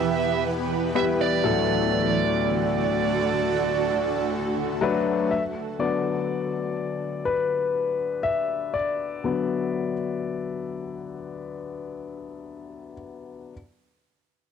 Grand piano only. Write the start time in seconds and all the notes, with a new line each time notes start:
Already playing: E2 B2
0.94 G3 B3 E4 G4 B4
1.43 D2 A2 F#3 A3 D4 F#4 A4
4.81 F#3 A3 D4 F#4 B4
5.31 E5
5.79 D3 F#3 B3 D5
7.25 B4
8.23 E5
8.74 D5
9.24 D3 F#3 B3